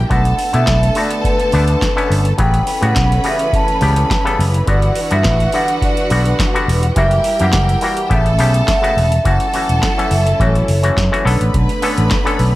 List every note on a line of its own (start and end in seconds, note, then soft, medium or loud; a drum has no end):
0.10 0.32 B1 loud
0.10 0.43 D3 medium
0.10 2.37 D3 medium
0.10 0.43 A3 medium
0.10 2.37 A3 medium
0.10 0.43 B3 medium
0.10 2.37 B3 medium
0.10 0.44 F#4 medium
0.10 2.35 A4 medium
0.10 0.56 F#5 loud
0.10 2.35 A5 medium
0.10 kick loud
0.10 closed hi-hat medium
0.25 closed hi-hat soft
0.39 open hi-hat medium
0.53 0.64 B2 medium
0.53 0.86 D3 medium
0.53 0.86 A3 medium
0.53 0.86 B3 medium
0.53 0.87 E4 medium
0.53 0.98 E5 loud
0.53 closed hi-hat soft
0.67 0.89 B1 medium
0.67 kick loud
0.67 snare loud
0.67 clap medium
0.67 closed hi-hat medium
0.83 closed hi-hat medium
0.95 1.40 D3 medium
0.95 1.40 A3 medium
0.95 1.41 B3 medium
0.95 1.41 F#4 medium
0.95 1.27 D5 medium
0.95 open hi-hat medium
1.11 closed hi-hat medium
1.25 2.07 B4 medium
1.25 kick medium
1.25 closed hi-hat medium
1.40 closed hi-hat soft
1.52 1.75 D2 medium
1.52 1.86 D3 medium
1.52 1.86 A3 medium
1.52 1.86 B3 medium
1.52 1.87 D4 medium
1.52 open hi-hat medium
1.68 closed hi-hat soft
1.82 kick loud
1.82 snare loud
1.82 clap loud
1.82 closed hi-hat medium
1.96 2.29 D3 medium
1.96 2.29 A3 medium
1.96 2.29 B3 medium
1.96 2.30 C#4 loud
1.96 closed hi-hat soft
2.10 2.32 G1 medium
2.10 open hi-hat medium
2.25 closed hi-hat soft
2.38 2.60 A1 loud
2.38 2.71 C#3 medium
2.38 6.93 E3 medium
2.38 2.72 F#3 medium
2.38 2.71 G3 medium
2.38 4.66 A3 medium
2.38 2.72 B3 medium
2.38 4.66 C#4 loud
2.38 4.64 B4 medium
2.38 2.85 G5 loud
2.38 4.64 B5 medium
2.38 kick loud
2.38 closed hi-hat medium
2.54 closed hi-hat soft
2.67 open hi-hat medium
2.81 2.93 A2 medium
2.81 3.14 C#3 medium
2.81 3.15 G3 medium
2.81 3.15 B3 medium
2.81 3.15 F#4 medium
2.81 3.27 F#5 medium
2.81 closed hi-hat soft
2.96 3.18 B1 medium
2.96 kick loud
2.96 snare loud
2.96 clap medium
2.96 closed hi-hat medium
3.12 closed hi-hat soft
3.24 3.69 C#3 medium
3.24 3.69 G3 medium
3.24 3.69 B3 medium
3.24 3.69 F#4 medium
3.24 open hi-hat medium
3.28 3.56 E5 medium
3.39 closed hi-hat soft
3.53 4.36 A5 loud
3.53 kick loud
3.53 closed hi-hat medium
3.68 closed hi-hat soft
3.81 4.03 C#2 medium
3.81 4.14 C#3 medium
3.81 4.15 G3 medium
3.81 4.15 B3 medium
3.81 4.15 G4 medium
3.81 open hi-hat medium
3.96 closed hi-hat soft
4.11 kick loud
4.11 snare loud
4.11 clap loud
4.11 closed hi-hat medium
4.25 4.58 C#3 medium
4.25 4.58 G3 medium
4.25 4.58 B3 medium
4.25 4.58 A4 loud
4.25 closed hi-hat soft
4.39 4.60 F#1 loud
4.39 open hi-hat medium
4.54 closed hi-hat soft
4.67 4.89 G1 loud
4.67 5.00 D3 medium
4.67 5.00 G3 medium
4.67 5.01 B3 medium
4.67 6.94 D4 medium
4.67 6.92 F#4 medium
4.67 6.94 F#4 medium
4.67 5.01 F#4 medium
4.67 6.94 B4 medium
4.67 5.14 D5 medium
4.67 6.92 F#5 medium
4.67 kick loud
4.67 closed hi-hat medium
4.82 closed hi-hat soft
4.95 open hi-hat medium
5.11 5.22 G2 medium
5.11 5.43 D3 medium
5.11 5.44 G3 medium
5.11 5.44 B3 medium
5.11 5.44 F#4 medium
5.11 5.56 E5 medium
5.11 closed hi-hat soft
5.24 5.46 A1 loud
5.24 kick loud
5.24 snare loud
5.24 clap medium
5.24 closed hi-hat medium
5.40 closed hi-hat soft
5.52 5.98 D3 medium
5.52 5.98 G3 medium
5.52 5.98 B3 medium
5.52 5.98 F#4 medium
5.52 5.67 F#5 loud
5.52 open hi-hat medium
5.68 closed hi-hat soft
5.82 6.36 D5 medium
5.82 kick loud
5.82 closed hi-hat medium
5.97 closed hi-hat soft
6.10 6.32 B1 medium
6.10 6.43 D3 medium
6.10 6.44 G3 medium
6.10 6.44 B3 medium
6.10 6.44 F#4 medium
6.10 open hi-hat medium
6.26 closed hi-hat soft
6.39 kick loud
6.39 snare loud
6.39 clap loud
6.39 closed hi-hat medium
6.54 6.87 D3 medium
6.54 6.87 G3 medium
6.54 6.87 B3 medium
6.54 6.87 F#4 loud
6.54 closed hi-hat soft
6.68 6.89 E1 medium
6.68 open hi-hat medium
6.83 closed hi-hat soft
6.96 7.18 F#1 loud
6.96 7.29 E3 medium
6.96 7.29 G3 medium
6.96 8.10 G3 medium
6.96 7.30 A#3 medium
6.96 8.10 E4 medium
6.96 7.30 F#4 medium
6.96 8.09 G4 medium
6.96 8.10 A#4 medium
6.96 7.42 E5 loud
6.96 8.09 G5 medium
6.96 kick loud
6.96 closed hi-hat medium
7.11 closed hi-hat soft
7.24 open hi-hat medium
7.40 7.50 F#2 medium
7.40 7.72 E3 medium
7.40 7.72 G3 medium
7.40 7.73 A#3 medium
7.40 7.73 G4 medium
7.40 8.14 F#5 loud
7.40 closed hi-hat soft
7.52 7.75 F#1 medium
7.52 kick loud
7.52 snare loud
7.52 clap medium
7.52 closed hi-hat medium
7.69 closed hi-hat medium
7.81 8.10 E3 medium
7.81 8.11 G3 medium
7.81 8.11 A#3 medium
7.81 8.11 F#4 medium
7.81 open hi-hat medium
7.97 closed hi-hat soft
8.09 8.40 A1 medium
8.09 8.33 C#3 medium
8.09 8.34 A3 medium
8.09 9.24 A3 medium
8.09 8.34 B3 medium
8.09 9.24 C#4 medium
8.09 8.34 G4 medium
8.09 9.23 A4 medium
8.09 8.68 E5 medium
8.09 9.24 A5 medium
8.09 kick loud
8.09 closed hi-hat medium
8.26 closed hi-hat soft
8.38 8.61 B1 medium
8.38 8.72 C#3 medium
8.38 8.72 A3 medium
8.38 8.72 B3 medium
8.38 8.73 G4 medium
8.38 open hi-hat medium
8.54 closed hi-hat soft
8.68 8.76 E5 loud
8.68 kick loud
8.68 snare loud
8.68 clap loud
8.68 closed hi-hat medium
8.76 8.83 F#5 medium
8.82 9.15 C#3 medium
8.82 9.15 A3 medium
8.82 9.16 B3 medium
8.82 9.16 F#4 loud
8.82 9.27 E5 medium
8.82 closed hi-hat soft
8.97 9.18 E1 medium
8.97 open hi-hat medium
9.12 closed hi-hat soft
9.24 9.37 F#1 loud
9.24 9.47 E3 medium
9.24 11.24 F#3 medium
9.24 9.47 A3 medium
9.24 9.47 C#4 medium
9.24 11.24 C#4 medium
9.24 11.24 E4 medium
9.24 9.48 F#4 medium
9.24 10.93 A4 medium
9.24 11.24 A4 medium
9.24 10.14 F#5 loud
9.24 10.93 A5 medium
9.24 kick loud
9.24 closed hi-hat medium
9.40 closed hi-hat soft
9.54 9.86 E3 medium
9.54 9.87 A3 medium
9.54 9.87 C#4 medium
9.54 9.87 F#4 medium
9.54 open hi-hat medium
9.69 9.79 E1 medium
9.69 closed hi-hat soft
9.83 kick loud
9.83 snare loud
9.83 clap medium
9.83 closed hi-hat medium
9.98 10.30 E3 medium
9.98 10.30 A3 medium
9.98 10.30 C#4 medium
9.98 10.31 A4 medium
9.98 closed hi-hat soft
10.11 10.32 F#1 medium
10.11 10.41 E5 medium
10.11 open hi-hat medium
10.27 closed hi-hat soft
10.40 10.61 A1 medium
10.40 10.72 E3 medium
10.40 10.72 A3 medium
10.40 10.73 C#4 medium
10.40 10.73 F#4 medium
10.40 11.22 C#5 medium
10.40 kick loud
10.40 closed hi-hat medium
10.55 closed hi-hat soft
10.68 10.90 F#1 medium
10.68 open hi-hat medium
10.83 11.04 E3 medium
10.83 11.05 A3 medium
10.83 11.05 C#4 medium
10.83 11.05 F#4 medium
10.83 closed hi-hat soft
10.97 11.08 F#2 loud
10.97 kick loud
10.97 snare loud
10.97 clap loud
10.97 closed hi-hat medium
11.12 11.25 E3 medium
11.12 11.25 A3 medium
11.12 11.24 C#4 medium
11.12 11.26 F#4 loud
11.12 closed hi-hat soft
11.25 11.37 B1 loud
11.25 11.72 D3 medium
11.25 12.55 D3 medium
11.25 12.55 A3 medium
11.25 11.72 B3 medium
11.25 12.55 B3 medium
11.25 11.72 C#4 medium
11.25 11.72 A4 loud
11.25 12.55 B4 medium
11.25 12.55 B5 medium
11.25 open hi-hat medium
11.41 11.50 A1 medium
11.41 closed hi-hat soft
11.54 11.65 B1 loud
11.54 kick loud
11.54 closed hi-hat medium
11.69 closed hi-hat soft
11.82 12.15 D3 medium
11.82 12.15 B3 medium
11.82 12.15 C#4 medium
11.82 12.16 A4 medium
11.82 open hi-hat medium
11.98 12.08 A1 medium
11.98 closed hi-hat soft
12.10 kick loud
12.10 snare loud
12.10 clap loud
12.10 closed hi-hat medium
12.25 12.55 D3 medium
12.25 12.55 B3 medium
12.25 12.55 C#4 medium
12.25 12.55 A4 medium
12.25 closed hi-hat soft
12.39 12.55 B1 medium
12.39 open hi-hat medium